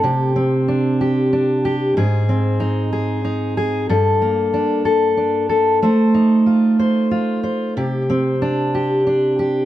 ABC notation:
X:1
M:6/8
L:1/8
Q:3/8=62
K:Cdor
V:1 name="Steel-string acoustic guitar"
[C,G] C D G D G | [_A,,_A] C E A E A | [G,,A] B, D A D A | [A,c] E F c F c |
[C,G] C D G D G |]